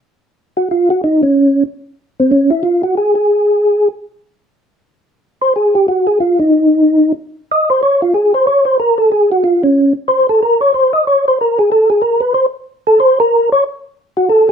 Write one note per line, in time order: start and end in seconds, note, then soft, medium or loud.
0.57 0.68 F#4 medium
0.71 0.89 F4 medium
0.90 1.01 F#4 loud
1.04 1.21 D#4 medium
1.23 1.63 C#4 medium
2.20 2.31 C4 medium
2.31 2.50 C#4 medium
2.50 2.62 E4 medium
2.63 2.82 F4 medium
2.83 2.95 F#4 medium
2.97 3.14 G#4 medium
3.15 3.88 G#4 medium
5.41 5.54 C5 medium
5.56 5.74 G#4 medium
5.75 5.87 G4 medium
5.88 6.07 F#4 medium
6.07 6.19 G#4 loud
6.20 6.39 F4 medium
6.39 7.12 D#4 medium
7.51 7.69 D#5 medium
7.70 7.81 C5 loud
7.83 8.01 C#5 loud
8.02 8.14 F4 medium
8.14 8.33 G#4 medium
8.34 8.46 C5 loud
8.47 8.65 C#5 loud
8.65 8.77 C5 loud
8.80 8.98 A#4 medium
8.98 9.10 A4 medium
9.12 9.30 G#4 medium
9.32 9.43 F#4 loud
9.44 9.62 F4 medium
9.63 9.93 C#4 medium
10.08 10.27 C5 loud
10.29 10.40 A4 loud
10.43 10.60 A#4 medium
10.61 10.72 C#5 loud
10.74 10.92 C5 medium
10.93 11.05 D#5 loud
11.07 11.25 C#5 medium
11.28 11.38 C5 medium
11.41 11.58 A#4 medium
11.59 11.70 G#4 loud
11.72 11.90 A4 loud
11.90 12.02 G#4 medium
12.02 12.21 A#4 medium
12.20 12.33 B4 medium
12.34 12.46 C5 loud
12.87 12.99 A4 loud
13.00 13.19 C5 loud
13.20 13.49 A#4 loud
13.52 13.64 C#5 loud
14.17 14.29 F#4 medium
14.29 14.48 A4 loud